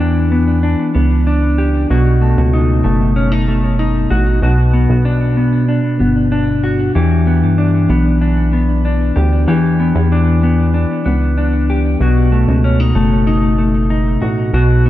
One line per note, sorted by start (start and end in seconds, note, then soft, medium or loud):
0.00 0.76 E2 medium
0.00 1.90 E3 medium
0.00 0.31 B3 medium
0.00 0.62 D4 medium
0.00 1.57 G4 medium
0.32 0.94 B3 medium
0.63 1.26 D4 medium
0.95 1.86 C#2 medium
0.95 2.21 B3 soft
1.27 1.96 D4 medium
1.58 1.90 G4 medium
1.90 2.35 B1 loud
1.90 4.41 B2 medium
1.90 4.10 F#4 medium
2.22 2.83 A3 medium
2.38 2.82 C#2 medium
2.53 3.16 D#4 medium
2.84 4.07 F#1 loud
2.84 3.47 A3 medium
3.16 3.32 C#4 medium
3.32 3.78 D#4 soft
3.48 4.49 A3 medium
3.79 4.49 D#4 medium
4.11 4.41 A1 medium
4.11 4.43 F#4 medium
4.42 4.87 B1 medium
4.42 6.95 B2 medium
4.42 6.62 F#4 medium
4.73 5.37 B3 medium
4.90 5.81 B1 loud
5.05 5.68 D4 medium
5.37 6.00 B3 medium
5.68 6.31 D4 medium
6.00 6.91 G1 medium
6.00 7.26 B3 soft
6.32 7.58 D4 medium
6.64 6.95 F#4 medium
6.95 7.44 E2 medium
6.95 9.47 E3 medium
6.95 9.15 G4 medium
7.27 7.89 B3 medium
7.43 7.88 G2 medium
7.58 8.21 D4 medium
7.90 9.12 B1 medium
7.90 8.53 B3 medium
8.21 8.85 D4 medium
8.53 9.79 B3 medium
8.85 10.12 D4 medium
9.16 9.46 D2 medium
9.16 9.48 G4 medium
9.48 9.93 E2 medium
9.48 12.00 E3 medium
9.48 11.68 G4 medium
9.80 10.43 B3 soft
9.95 10.86 E2 loud
10.12 10.73 D4 medium
10.43 11.05 B3 medium
10.74 11.36 D4 medium
11.06 11.97 C#2 medium
11.06 12.32 B3 medium
11.38 12.07 D4 medium
11.70 12.01 G4 medium
12.00 12.46 B1 medium
12.00 14.52 B2 medium
12.00 14.21 F#4 medium
12.32 12.94 A3 medium
12.48 12.93 C#2 loud
12.64 12.80 C#4 medium
12.80 13.26 D#4 medium
12.95 14.18 F#1 medium
12.95 13.57 A3 medium
13.27 13.89 D#4 medium
13.58 14.59 A3 medium
13.90 14.60 D#4 medium
14.22 14.52 A1 medium
14.22 14.54 F#4 medium
14.53 14.90 B1 medium
14.53 14.90 B2 medium
14.53 14.90 F#4 medium
14.86 14.90 B3 medium